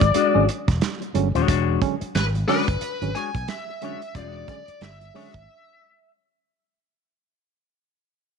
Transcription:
0.00 0.13 G#1 loud
0.00 0.46 D5 loud
0.00 muted clean electric guitar stroke medium
0.00 kick loud
0.00 closed hi-hat medium
0.14 0.46 G#3 medium
0.14 0.46 D4 medium
0.14 0.47 F#4 loud
0.14 muted fretless electric bass stroke soft
0.14 closed hi-hat loud
0.34 0.46 G#1 medium
0.34 0.43 D3 medium
0.34 0.43 F#3 medium
0.34 0.44 G#3 medium
0.34 0.44 C#4 medium
0.49 muted clean electric guitar stroke medium
0.49 closed hi-hat medium
0.68 0.79 E1 loud
0.68 muted clean electric guitar stroke medium
0.68 kick loud
0.68 snare soft
0.68 closed hi-hat medium
0.81 0.90 G#3 soft
0.81 0.90 C#4 soft
0.81 muted clean electric guitar stroke soft
0.81 snare loud
0.81 closed hi-hat medium
1.01 muted clean electric guitar stroke soft
1.01 closed hi-hat soft
1.15 1.32 G1 medium
1.15 1.28 D3 medium
1.15 1.28 F#3 medium
1.15 1.28 G#3 medium
1.15 1.28 C#4 medium
1.15 closed hi-hat medium
1.35 1.46 D#1 loud
1.35 1.46 G#3 medium
1.35 1.47 D4 medium
1.35 1.47 F#4 medium
1.35 1.48 C#5 loud
1.35 closed hi-hat medium
1.47 1.76 E1 loud
1.47 1.79 G#3 medium
1.47 1.79 D4 loud
1.47 1.80 F#4 medium
1.47 1.80 C#5 loud
1.47 kick loud
1.47 closed hi-hat loud
1.68 1.74 G#3 soft
1.68 1.74 C#4 soft
1.82 1.95 D3 medium
1.82 1.95 F#3 medium
1.82 1.95 G#3 medium
1.82 1.95 C#4 medium
1.82 kick loud
1.82 closed hi-hat medium
2.01 muted clean electric guitar stroke soft
2.01 muted fretless electric bass stroke medium
2.01 closed hi-hat medium
2.15 2.43 G#1 loud
2.15 2.23 G#3 soft
2.15 2.23 C#4 soft
2.15 2.25 B4 medium
2.15 snare medium
2.15 closed hi-hat medium
2.35 muted clean electric guitar stroke medium
2.35 closed hi-hat soft
2.47 2.61 D3 medium
2.47 2.61 F#3 medium
2.47 2.66 G#3 loud
2.47 2.61 G#3 medium
2.47 2.62 C#4 medium
2.47 2.67 D4 loud
2.47 2.67 F#4 loud
2.47 3.17 B4 loud
2.47 2.67 D5 loud
2.47 open hi-hat medium
2.68 2.79 G1 medium
2.68 muted clean electric guitar stroke medium
2.68 kick loud
2.68 closed hi-hat medium
2.81 muted fretless electric bass stroke medium
2.81 muted clean electric guitar stroke soft
2.81 closed hi-hat medium
3.02 3.13 G#1 medium
3.02 3.10 D3 medium
3.02 3.10 F#3 medium
3.02 3.10 G#3 medium
3.02 3.11 C#4 medium
3.02 closed hi-hat soft
3.15 3.29 G#3 medium
3.15 3.30 D4 medium
3.15 3.30 F#4 medium
3.15 3.30 C#5 medium
3.15 3.49 G#5 loud
3.15 closed hi-hat medium
3.35 3.46 B1 medium
3.35 muted clean electric guitar stroke soft
3.35 kick loud
3.35 closed hi-hat medium
3.48 3.56 G#3 soft
3.48 3.56 C#4 soft
3.48 4.16 E5 loud
3.48 snare loud
3.48 closed hi-hat medium
3.69 muted clean electric guitar stroke medium
3.82 3.94 D3 medium
3.82 3.95 F#3 medium
3.82 3.95 G#3 medium
3.82 4.00 G#3 medium
3.82 3.95 C#4 medium
3.82 4.01 D4 medium
3.82 4.01 F#4 medium
3.82 4.01 C#5 medium
3.82 closed hi-hat medium
4.02 closed hi-hat medium
4.15 4.43 E1 loud
4.15 4.28 G3 medium
4.15 4.29 C#4 medium
4.15 4.29 F4 loud
4.15 4.46 D5 medium
4.15 kick loud
4.15 closed hi-hat loud
4.28 4.46 G#3 medium
4.28 4.46 D4 medium
4.28 4.47 F#4 loud
4.36 4.40 G#3 soft
4.36 4.40 C#4 soft
4.48 4.61 D3 medium
4.48 4.61 F#3 medium
4.48 4.61 G#3 medium
4.48 4.61 C#4 medium
4.48 4.83 D5 loud
4.48 kick loud
4.48 closed hi-hat medium
4.68 muted fretless electric bass stroke medium
4.68 muted clean electric guitar stroke soft
4.68 closed hi-hat medium
4.81 5.09 G1 medium
4.81 4.89 G#3 soft
4.81 4.89 C#4 soft
4.81 6.11 E5 medium
4.81 snare medium
4.81 closed hi-hat medium
5.01 muted clean electric guitar stroke soft
5.01 closed hi-hat soft
5.14 5.28 D3 medium
5.14 5.28 F#3 medium
5.14 5.33 G#3 medium
5.14 5.28 G#3 medium
5.14 5.28 C#4 medium
5.14 5.33 D4 medium
5.14 5.33 F#4 medium
5.14 5.34 C#5 medium
5.14 open hi-hat medium
5.34 5.46 G#1 loud
5.34 kick loud
5.34 closed hi-hat medium

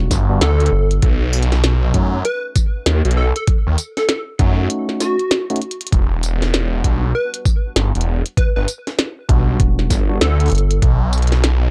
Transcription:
0.00 0.25 G3 medium
0.00 0.25 B3 medium
0.00 0.25 D4 medium
0.00 0.25 F#4 loud
0.11 0.39 G1 loud
0.11 kick medium
0.11 snare medium
0.11 closed hi-hat medium
0.11 tambourine medium
0.29 0.38 G3 medium
0.29 0.38 B3 medium
0.29 0.38 D4 medium
0.29 0.38 F#4 loud
0.41 0.70 D2 loud
0.41 1.10 A4 loud
0.41 snare loud
0.41 closed hi-hat medium
0.60 closed hi-hat soft
0.66 closed hi-hat medium
0.72 1.01 G1 loud
0.91 closed hi-hat medium
1.02 1.93 B1 loud
1.02 kick loud
1.02 closed hi-hat medium
1.33 tambourine medium
1.43 closed hi-hat medium
1.52 snare soft
1.52 closed hi-hat soft
1.64 snare loud
1.64 closed hi-hat medium
1.94 2.23 F#2 loud
1.94 2.15 A3 medium
1.94 2.15 C#4 medium
1.94 2.15 D#4 medium
1.94 2.16 F#4 medium
1.94 kick medium
1.94 closed hi-hat medium
2.25 2.42 B4 loud
2.25 closed hi-hat medium
2.56 kick loud
2.56 closed hi-hat medium
2.56 tambourine medium
2.86 3.02 D#2 loud
2.86 snare loud
2.86 closed hi-hat medium
3.05 3.33 B1 loud
3.05 closed hi-hat soft
3.11 closed hi-hat medium
3.17 3.29 A4 medium
3.36 3.44 A4 medium
3.36 closed hi-hat medium
3.47 kick loud
3.47 closed hi-hat medium
3.67 3.76 D#2 loud
3.78 closed hi-hat medium
3.78 tambourine medium
3.97 4.05 A4 medium
3.97 snare soft
3.97 closed hi-hat soft
4.09 4.21 A4 medium
4.09 snare loud
4.09 closed hi-hat medium
4.39 4.68 F#2 loud
4.39 5.15 A3 medium
4.39 5.15 C#4 medium
4.39 5.15 D#4 medium
4.39 5.15 F#4 loud
4.39 kick loud
4.39 closed hi-hat medium
4.70 closed hi-hat medium
4.89 snare soft
5.00 5.88 F#4 loud
5.00 snare medium
5.00 closed hi-hat medium
5.00 tambourine medium
5.19 closed hi-hat soft
5.31 snare loud
5.31 closed hi-hat medium
5.50 5.59 A3 medium
5.50 5.59 C#4 medium
5.50 5.59 D#4 medium
5.50 5.59 F#4 loud
5.50 closed hi-hat medium
5.56 closed hi-hat medium
5.62 closed hi-hat medium
5.71 closed hi-hat medium
5.81 closed hi-hat medium
5.87 closed hi-hat medium
5.92 6.82 E1 loud
5.92 kick loud
5.92 closed hi-hat medium
6.23 closed hi-hat medium
6.23 tambourine medium
6.42 snare soft
6.42 closed hi-hat soft
6.54 snare loud
6.54 closed hi-hat medium
6.84 7.13 B1 medium
6.84 7.05 G3 medium
6.84 7.05 B3 medium
6.84 7.05 D4 medium
6.84 7.05 F#4 medium
6.84 kick medium
6.84 closed hi-hat medium
7.15 7.32 B4 loud
7.34 closed hi-hat medium
7.45 kick loud
7.45 tambourine medium
7.76 7.92 G1 loud
7.76 snare loud
7.76 closed hi-hat medium
7.95 8.23 E1 loud
7.95 closed hi-hat medium
8.01 closed hi-hat medium
8.26 closed hi-hat medium
8.37 8.49 B4 medium
8.37 kick loud
8.37 closed hi-hat medium
8.56 8.66 G1 loud
8.56 8.64 B4 medium
8.68 closed hi-hat medium
8.68 tambourine medium
8.87 snare soft
8.87 closed hi-hat soft
8.99 snare loud
8.99 closed hi-hat medium
9.29 9.58 B1 medium
9.29 10.05 G3 medium
9.29 10.05 B3 medium
9.29 10.05 D4 medium
9.29 10.05 F#4 loud
9.29 kick loud
9.29 closed hi-hat medium
9.60 9.88 E1 medium
9.60 kick loud
9.60 closed hi-hat medium
9.79 snare soft
9.90 10.19 G1 loud
9.90 kick medium
9.90 snare medium
9.90 closed hi-hat medium
9.90 tambourine medium
10.09 10.18 G3 medium
10.09 10.18 B3 medium
10.09 10.18 D4 medium
10.09 10.18 F#4 loud
10.21 10.50 D2 loud
10.21 10.90 A4 loud
10.21 snare loud
10.21 closed hi-hat medium
10.40 closed hi-hat soft
10.46 closed hi-hat soft
10.48 closed hi-hat soft
10.50 closed hi-hat soft
10.52 10.80 G1 loud
10.52 closed hi-hat soft
10.55 closed hi-hat medium
10.58 closed hi-hat medium
10.71 closed hi-hat medium
10.82 11.70 B1 loud
10.82 kick loud
10.82 closed hi-hat medium
11.13 closed hi-hat soft
11.13 tambourine medium
11.18 closed hi-hat soft
11.22 closed hi-hat soft
11.27 closed hi-hat medium
11.32 snare soft
11.32 closed hi-hat soft
11.44 snare loud
11.44 closed hi-hat medium

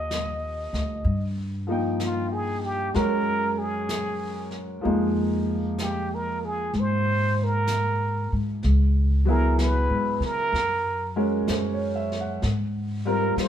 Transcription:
0.00 0.69 D#2 medium
0.00 1.03 F3 soft
0.00 1.04 A#3 soft
0.00 1.05 D#4 soft
0.00 1.06 G4 medium
0.00 1.34 D#5 medium
0.11 brush sweep soft
0.11 snare soft
0.11 hi-hat pedal medium
0.73 1.02 D2 medium
0.73 snare soft
1.04 2.90 G2 medium
1.04 brush sweep soft
1.67 2.93 F3 soft
1.67 2.94 A#3 soft
1.67 2.95 D#4 soft
1.72 2.96 G5 soft
2.00 2.34 F4 medium
2.00 brush sweep soft
2.00 snare soft
2.00 hi-hat pedal soft
2.33 2.66 G#4 medium
2.64 2.97 G4 medium
2.94 4.80 F#2 medium
2.94 4.84 G#3 soft
2.94 4.84 C#4 soft
2.94 4.84 F#4 soft
2.94 3.60 A#4 medium
2.94 4.85 A#4 medium
2.94 brush sweep soft
2.94 snare soft
3.58 4.53 G#4 medium
3.89 brush sweep soft
3.89 snare soft
3.89 hi-hat pedal medium
4.51 snare soft
4.81 8.61 F3 soft
4.81 8.62 A#3 soft
4.81 8.62 D#4 soft
4.81 brush sweep soft
4.85 6.70 F2 medium
4.85 8.63 G#3 medium
5.78 6.16 G4 medium
5.78 brush sweep soft
5.78 snare soft
5.78 hi-hat pedal soft
6.15 6.46 A#4 medium
6.45 6.81 G#4 medium
6.73 8.28 G#2 medium
6.73 brush sweep soft
6.73 snare soft
6.79 7.45 C5 medium
7.44 8.34 A#4 medium
7.67 brush sweep soft
7.67 snare soft
7.67 hi-hat pedal medium
8.32 8.60 G#2 medium
8.63 9.85 C#2 medium
8.63 brush sweep soft
8.63 snare soft
9.25 10.51 F#3 medium
9.25 10.52 B3 soft
9.25 10.53 E4 soft
9.30 10.54 G#4 medium
9.30 9.63 A#4 medium
9.59 10.23 B4 medium
9.59 brush sweep soft
9.59 snare soft
9.59 hi-hat pedal soft
9.90 10.19 G#2 medium
10.20 10.50 C#3 medium
10.20 snare soft
10.25 11.14 A#4 medium
10.52 11.43 F#2 medium
10.52 brush sweep soft
10.52 snare soft
11.16 12.42 G#3 soft
11.16 12.42 C#4 soft
11.16 12.42 F#4 soft
11.16 12.43 A#4 soft
11.47 12.38 F#2 medium
11.47 11.93 C5 soft
11.47 brush sweep soft
11.47 snare soft
11.47 hi-hat pedal medium
11.73 12.13 C#5 soft
11.95 12.24 E5 soft
12.12 snare soft
12.20 12.53 F#5 soft
12.42 13.33 G#2 medium
12.42 brush sweep soft
12.42 snare soft
13.05 13.48 G3 soft
13.05 13.48 C4 soft
13.05 13.48 F4 soft
13.05 13.48 A#4 medium
13.10 13.42 A#4 medium
13.36 13.48 G2 medium
13.36 brush sweep soft
13.36 snare soft
13.36 hi-hat pedal soft
13.41 13.48 C5 medium

